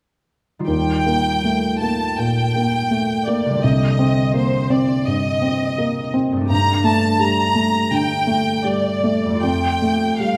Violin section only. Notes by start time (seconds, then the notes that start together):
0.68 G5
1.81 A5
2.17 G5
3.26 D5
3.63 D#5
4.35 C5
4.71 D5
5.07 D#5
6.49 A#5
6.86 A5
7.22 A#5
7.92 G5
8.64 D5
9.42 G5
10.20 F5